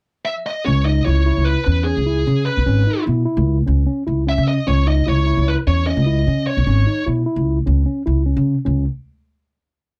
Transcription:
0.25 lead electric guitar E5
0.46 lead electric guitar D#5
0.66 upright bass C#2, tine electric piano C#4, lead electric guitar C#5
0.85 tine electric piano D#4, lead electric guitar D#5
1.05 upright bass C#2, tine electric piano E4, lead electric guitar C#5
1.26 tine electric piano E4
1.37 upright bass C#2
1.45 lead electric guitar B4
1.64 upright bass E2, tine electric piano C#4, lead electric guitar B4
1.84 tine electric piano C#4, lead electric guitar G#4
1.97 upright bass C#2
2.06 tine electric piano E4
2.27 upright bass C#3, tine electric piano C#4
2.46 lead electric guitar B4
2.57 upright bass B1
2.66 upright bass G#1, tine electric piano C#4
2.87 tine electric piano D#4
3.06 upright bass B2, tine electric piano E4
3.25 tine electric piano E4
3.37 upright bass C#2
3.67 upright bass C#2, tine electric piano C#4
3.87 tine electric piano C#4
4.07 upright bass C#2, tine electric piano E4
4.27 tine electric piano C#4, lead electric guitar E5
4.38 upright bass C#3
4.48 lead electric guitar D#5
4.67 upright bass C#2, tine electric piano C#4, lead electric guitar C#5
4.87 tine electric piano D#4, lead electric guitar D#5
5.07 upright bass C#2, tine electric piano E4, lead electric guitar C#5
5.26 tine electric piano E4
5.37 upright bass C#2
5.48 lead electric guitar B4
5.67 upright bass E2, tine electric piano C#4, lead electric guitar C#5
5.87 tine electric piano C#4, lead electric guitar D#5
5.97 upright bass C#2
6.07 tine electric piano E4
6.27 upright bass C#3, tine electric piano C#4
6.47 lead electric guitar C#5
6.57 upright bass B1
6.67 upright bass G#1, tine electric piano C#4
6.87 tine electric piano D#4
7.06 upright bass B2, tine electric piano E4
7.26 tine electric piano E4
7.36 upright bass C#2
7.66 upright bass C#2, tine electric piano C#4
7.86 tine electric piano C#4
8.06 upright bass C#2, tine electric piano E4
8.26 tine electric piano C#4
8.37 upright bass C#3
8.65 upright bass C#2, tine electric piano C#4

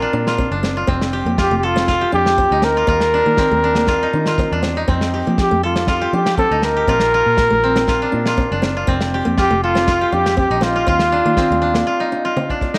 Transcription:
Already playing: koto C4 F4 G4, trumpet A#4
0.02 koto D4
0.13 fingered electric bass A#2, steel-string acoustic guitar D4
0.27 koto F4, snare
0.38 steel-string acoustic guitar C4, kick
0.51 fingered electric bass F#1, koto D4
0.63 steel-string acoustic guitar C4, snare
0.77 koto F4
0.87 fingered electric bass F1, steel-string acoustic guitar C4, koto C4, kick
1.01 snare
1.13 koto G4
1.25 fingered electric bass F2, steel-string acoustic guitar A#3
1.38 koto F4, trumpet G4, kick, snare
1.50 fingered electric bass F1, steel-string acoustic guitar A3
1.57 trumpet G4
1.63 trumpet F4, koto A4
1.76 steel-string acoustic guitar C4, snare
1.88 koto F4, kick, snare
2.01 koto G4
2.12 fingered electric bass F2, steel-string acoustic guitar D4, trumpet G4
2.26 koto G4, snare
2.38 steel-string acoustic guitar C4, kick
2.51 fingered electric bass D2, koto D#4
2.62 steel-string acoustic guitar C4, trumpet A#4, snare
2.77 koto F4
2.87 fingered electric bass D#2, koto F4, muted steel-string acoustic guitar stroke, kick
3.00 snare
3.14 koto D4
3.26 fingered electric bass D#3, steel-string acoustic guitar A#3
3.37 koto C4, kick, snare
3.51 fingered electric bass D#2, steel-string acoustic guitar A3
3.64 koto D4
3.75 steel-string acoustic guitar A#3, snare
3.87 koto F4, kick, snare
4.03 koto D#4
4.13 fingered electric bass D#3, steel-string acoustic guitar D4
4.26 koto F4, snare
4.38 steel-string acoustic guitar C4, kick, snare
4.51 fingered electric bass E2, koto D4
4.63 steel-string acoustic guitar C4, snare
4.77 koto D#4
4.88 fingered electric bass F2, steel-string acoustic guitar C4, koto C4, kick
5.01 snare
5.14 koto G4
5.27 fingered electric bass F3, steel-string acoustic guitar A#3
5.38 trumpet G4, kick, snare
5.51 fingered electric bass F2, steel-string acoustic guitar A3
5.63 trumpet F4, koto A4
5.76 steel-string acoustic guitar C4, snare
5.87 koto F4, trumpet F4, kick, snare
6.01 koto G4
6.13 fingered electric bass F3, steel-string acoustic guitar D4, trumpet G4
6.26 koto G4, snare
6.38 steel-string acoustic guitar C4, trumpet A4, kick
6.51 fingered electric bass D2, koto D#4
6.62 trumpet A#4, snare
6.77 koto G4
6.88 fingered electric bass A#1, steel-string acoustic guitar C4, koto F4, kick
7.00 snare
7.14 koto F4
7.26 fingered electric bass A#2
7.37 kick, snare
7.50 fingered electric bass A#1, steel-string acoustic guitar A3
7.64 koto C4
7.76 steel-string acoustic guitar C4, snare
7.88 koto F4, kick, snare
8.02 koto D4
8.12 fingered electric bass A#2, steel-string acoustic guitar D4
8.26 koto F4, snare
8.37 steel-string acoustic guitar C4, kick
8.51 fingered electric bass F#1, koto D4
8.62 steel-string acoustic guitar C4, snare
8.77 koto F4
8.87 fingered electric bass F1, steel-string acoustic guitar C4, koto C4, kick
9.01 snare
9.14 koto G4
9.25 fingered electric bass F2, steel-string acoustic guitar A#3
9.37 koto F4, trumpet G4, kick, snare
9.50 fingered electric bass F1, steel-string acoustic guitar A3
9.63 trumpet F4, koto A4
9.75 steel-string acoustic guitar C4, snare
9.87 koto F4, kick, snare
10.01 koto G4
10.12 fingered electric bass F2, steel-string acoustic guitar D4, trumpet G4
10.26 koto G4, snare
10.37 steel-string acoustic guitar C4, trumpet G4, kick
10.50 fingered electric bass A#1, koto D#4
10.61 steel-string acoustic guitar C4, trumpet F4, snare
10.76 koto F4
10.87 fingered electric bass D#2, steel-string acoustic guitar C4, koto F4, kick
10.99 snare
11.12 koto D4
11.25 fingered electric bass D#3, steel-string acoustic guitar A#3
11.37 koto C4, kick, snare
11.50 fingered electric bass D#2, steel-string acoustic guitar A3
11.62 koto D4
11.74 steel-string acoustic guitar A#3, snare
11.87 koto F4
12.00 koto D#4
12.12 steel-string acoustic guitar D4
12.25 koto F4
12.36 steel-string acoustic guitar C4, high tom
12.50 koto D4, kick
12.61 muted steel-string acoustic guitar stroke, kick
12.74 koto D#4, snare

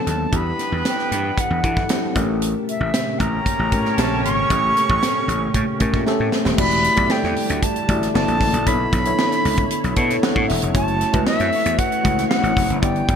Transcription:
Already playing: string machine D3 A3 B3 A4, tine electric piano F#3 B3 D4 A4
0.07 slap bass D#2, flute A5, snare, closed hi-hat
0.31 slap bass E2, string machine E3 G3 D4, tine electric piano G3 D4 E4 G4, horn section B3 G4 B4, kick, closed hi-hat
0.36 flute B5
0.59 snare, closed hi-hat
0.72 slap bass E2
0.85 flute G5, snare, closed hi-hat
0.99 snare
1.11 slap bass G2, closed hi-hat
1.38 flute F#5, kick, closed hi-hat
1.50 slap bass E2
1.63 slap bass E3, tine electric piano F#3 D4 E4 A4, kick, closed hi-hat
1.77 kick, snare
1.89 tine electric piano F#3 D4 E4 G4, snare, closed hi-hat
2.15 slap bass A1, string machine A#2 C#3 A3 G4, tine electric piano A3 C#4 G4 A#4, kick, snare, closed hi-hat
2.42 closed hi-hat
2.69 flute E5, closed hi-hat
2.80 slap bass A1
2.94 snare, closed hi-hat
3.19 slap bass A1, horn section C#4 G4 A#4 C#5, flute A#5, kick, closed hi-hat
3.46 kick, closed hi-hat
3.59 slap bass A1
3.71 slap bass A2, tine electric piano A3 C#4 G4 A#4, kick, closed hi-hat
3.85 snare
3.97 slap bass A#1, tine electric piano A3 C#4 G4 C#5, flute A5, snare, closed hi-hat
4.24 slap bass G#1, flute C#6, snare, closed hi-hat
4.50 slap bass A1, tine electric piano A3 C#4 G4 A4, kick, closed hi-hat
4.77 snare, closed hi-hat
4.90 slap bass A1, kick
5.03 snare, closed hi-hat
5.28 slap bass A1, closed hi-hat
5.54 slap bass A2, kick, closed hi-hat
5.80 slap bass A2, tine electric piano A3 C#4 G4 A#4, kick, closed hi-hat
5.93 slap bass A#2, kick, snare
6.06 tine electric piano A3 C#4 G4 A4, snare
6.20 slap bass A2
6.32 snare
6.45 slap bass D#1, snare
6.57 slap bass E1, string machine D3 G3 A3 E4, tine electric piano A3 E4 F#4 G4 D5, flute B5, kick, crash
6.71 closed hi-hat
6.84 snare, closed hi-hat
6.96 slap bass B1, tine electric piano A3 E4 G4 A4 D5, kick, closed hi-hat
7.10 flute G5, muted slap bass stroke, snare
7.24 slap bass E2, snare
7.36 open hi-hat
7.49 slap bass D2, closed hi-hat
7.62 flute A5, kick, closed hi-hat
7.76 closed hi-hat
7.88 slap bass A1, tine electric piano A3 E4 F#4 G4 D5, kick, closed hi-hat
8.02 snare, closed hi-hat
8.14 slap bass F#1, tine electric piano A#3 E4 F#4 A4 D5, string machine E4, flute A5, snare
8.28 slap bass A#1, closed hi-hat
8.41 slap bass A1, kick, snare, open hi-hat
8.53 slap bass A#1, closed hi-hat
8.66 slap bass B1, string machine A3 C#5, tine electric piano B3 D4 E4 A4 C#5, flute B5, kick, closed hi-hat
8.93 slap bass B1, kick, snare, closed hi-hat
9.05 tine electric piano B3 D4 E4 A4 C#5, closed hi-hat
9.19 snare
9.32 snare, closed hi-hat
9.45 slap bass C#2, open hi-hat
9.58 kick, closed hi-hat
9.70 closed hi-hat
9.84 slap bass B1, closed hi-hat
9.96 slap bass B2, tine electric piano B3 D4 E4 A4 C#5 A5, kick, closed hi-hat
10.10 snare, closed hi-hat
10.23 tine electric piano F#5, snare
10.36 slap bass A2, kick
10.48 slap bass E1, tine electric piano E5, snare, open hi-hat
10.62 slap bass F1, closed hi-hat
10.74 slap bass F#1, string machine E3 A3 F#4, tine electric piano A3 C#4 E4 F#4 C#5, flute A5, kick, closed hi-hat
10.88 closed hi-hat
11.01 snare, closed hi-hat
11.12 slap bass C#2, tine electric piano A3 C#4 E4 F#4 B4, kick, closed hi-hat
11.26 flute E5, muted slap bass stroke, snare
11.40 slap bass F#2, snare, closed hi-hat
11.52 open hi-hat
11.65 slap bass E2, closed hi-hat
11.78 flute F#5, kick, closed hi-hat
11.92 closed hi-hat
12.03 slap bass C#2, tine electric piano A3 C#4 E4 F#4 C#5, kick, closed hi-hat
12.18 snare, closed hi-hat
12.28 flute F#5, snare
12.43 slap bass A1, closed hi-hat
12.57 slap bass F1, kick, snare, open hi-hat
12.70 slap bass F#1, closed hi-hat
12.82 slap bass G1, tine electric piano B3 D4 E4 G4 D5, string machine B3 D4 G5, flute G5, kick, closed hi-hat
12.96 closed hi-hat
13.08 slap bass G1, kick, closed hi-hat

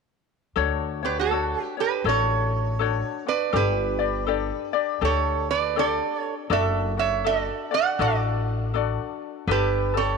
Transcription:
0.56 upright bass D2, ukulele D4 F#4 A4 C#5
1.03 ukulele D4 F#4 C#5, resonator guitar played with a steel bar G4 B4
1.19 resonator guitar played with a steel bar F#4 A4
1.31 ukulele D4 F#4 A4 C#5
1.63 resonator guitar played with a steel bar G4
1.77 ukulele D4 C#5, resonator guitar played with a steel bar G4 B4
2.04 upright bass A1, ukulele D4 F#4 A4 C#5
2.09 resonator guitar played with a steel bar A4 C#5
2.79 ukulele D4 F#4 A4 C#5
3.26 ukulele D4 F#4, resonator guitar played with a steel bar B4 D5
3.53 upright bass G1, ukulele D4 G4 A4 D5, resonator guitar played with a steel bar G4 B4
3.99 ukulele D4 G4 D5
4.27 ukulele D4 G4 A4 D5
4.73 ukulele D4 G4 D5
5.01 upright bass D2, ukulele D4 G4 A4, resonator guitar played with a steel bar A4 C#5
5.51 resonator guitar played with a steel bar B4 D5
5.76 ukulele D4 G4 A4 D5, resonator guitar played with a steel bar A4 D5
6.19 resonator guitar played with a steel bar C#5
6.50 upright bass F#1, ukulele D4 F#4 A4 D5, resonator guitar played with a steel bar A4 E5
6.97 ukulele D4 F#4, resonator guitar played with a steel bar C#5 E5
7.24 ukulele D4 F#4 A4 D5, resonator guitar played with a steel bar A4 D#5
7.45 resonator guitar played with a steel bar D5
7.71 ukulele D4 F#4 D5, resonator guitar played with a steel bar D5 F#5
7.99 upright bass A1, ukulele D4 F#4 A4 D5, resonator guitar played with a steel bar A4 D5
8.74 ukulele D4 F#4 A4 D5
9.47 upright bass G1, ukulele D4 G4 A4 B4, resonator guitar played with a steel bar G4 B4
9.94 ukulele D4 G4 A4, resonator guitar played with a steel bar C#5
9.98 resonator guitar played with a steel bar A4

